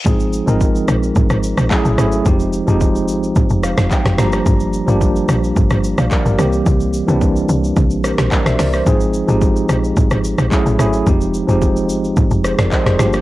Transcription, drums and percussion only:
0.06 kick loud
0.06 shaker medium
0.20 shaker medium
0.33 shaker medium
0.48 shaker medium
0.61 kick medium
0.61 shaker medium
0.75 shaker medium
0.88 cross-stick loud
0.88 shaker loud
1.03 shaker medium
1.16 kick loud
1.16 shaker medium
1.30 cross-stick medium
1.30 shaker medium
1.43 shaker loud
1.57 cross-stick loud
1.57 shaker medium
1.71 kick medium
1.71 clap loud
1.71 shaker medium
1.85 shaker medium
1.98 cross-stick loud
1.98 shaker loud
2.12 shaker medium
2.26 kick loud
2.26 shaker medium
2.40 shaker medium
2.53 shaker medium
2.68 shaker medium
2.81 kick medium
2.81 shaker medium
2.96 shaker medium
3.08 shaker loud
3.23 shaker soft
3.36 kick loud
3.36 shaker medium
3.50 shaker medium
3.63 cross-stick loud
3.63 shaker medium
3.78 cross-stick loud
3.78 snare medium
3.78 shaker medium
3.91 kick medium
3.91 clap medium
3.91 shaker medium
4.06 cross-stick medium
4.06 snare medium
4.06 shaker medium
4.18 cross-stick loud
4.18 snare medium
4.18 shaker loud
4.32 cross-stick loud
4.32 shaker medium
4.46 kick loud
4.46 shaker medium
4.60 shaker medium
4.73 shaker loud
4.88 shaker medium
5.01 kick medium
5.01 shaker medium
5.16 shaker medium
5.29 cross-stick loud
5.29 shaker loud
5.44 shaker medium
5.56 kick loud
5.56 shaker medium
5.70 cross-stick loud
5.70 shaker medium
5.84 shaker loud
5.98 cross-stick loud
5.98 shaker medium
6.11 kick loud
6.11 clap loud
6.11 shaker medium
6.26 shaker medium
6.39 cross-stick loud
6.39 shaker loud
6.53 shaker medium
6.66 kick loud
6.66 shaker medium
6.80 shaker medium
6.93 shaker medium
7.08 shaker medium
7.21 kick medium
7.21 shaker medium
7.36 shaker medium
7.49 shaker loud
7.64 shaker medium
7.76 kick loud
7.76 shaker medium
7.90 shaker medium
8.04 cross-stick loud
8.04 shaker loud
8.18 cross-stick loud
8.18 snare medium
8.18 shaker medium
8.31 kick loud
8.31 clap loud
8.31 shaker medium
8.46 cross-stick medium
8.46 snare medium
8.46 shaker medium
8.59 cross-stick loud
8.59 snare medium
8.59 open hi-hat medium
8.59 shaker loud
8.73 cross-stick medium
8.73 shaker medium
8.86 kick loud
8.86 shaker medium
9.00 shaker medium
9.13 shaker loud
9.28 shaker medium
9.41 kick medium
9.41 shaker medium
9.56 shaker medium
9.69 cross-stick loud
9.69 shaker loud
9.84 shaker soft
9.97 kick loud
9.97 shaker medium
10.11 cross-stick loud
10.11 shaker medium
10.24 shaker loud
10.38 cross-stick loud
10.38 shaker medium
10.52 kick medium
10.52 clap loud
10.52 shaker medium
10.66 shaker medium
10.79 cross-stick loud
10.79 shaker loud
10.93 shaker medium
11.07 kick loud
11.07 shaker medium
11.21 shaker medium
11.34 shaker loud
11.49 shaker medium
11.62 kick medium
11.62 shaker medium
11.76 shaker medium
11.89 shaker loud
12.04 shaker soft
12.17 kick loud
12.17 shaker medium
12.31 shaker medium
12.44 cross-stick loud
12.44 shaker medium
12.59 cross-stick loud
12.59 snare medium
12.59 shaker medium
12.72 kick medium
12.72 clap loud
12.72 shaker medium
12.86 cross-stick medium
12.86 snare medium
12.86 shaker medium
12.99 cross-stick loud
12.99 snare medium
12.99 shaker loud
13.13 cross-stick loud
13.13 shaker medium

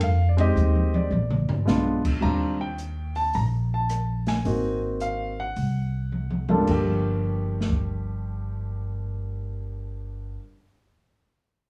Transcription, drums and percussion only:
0.01 ride medium
0.38 ride soft
0.57 hi-hat pedal soft
0.57 high tom soft
0.75 high tom medium
0.94 high tom medium
1.12 high tom medium
1.31 mid tom medium
1.49 floor tom medium
1.67 snare medium
1.67 hi-hat pedal medium
2.05 kick medium
2.05 crash medium
2.78 closed hi-hat soft
3.15 open hi-hat soft
3.33 open hi-hat soft
3.89 cross-stick medium
3.89 closed hi-hat medium
4.27 snare medium
4.27 open hi-hat soft
4.45 open hi-hat soft
5.00 closed hi-hat soft
5.56 open hi-hat soft
6.12 high tom soft
6.31 high tom medium
6.49 high tom medium
6.67 kick medium
6.67 crash medium
7.61 snare soft
7.70 kick medium

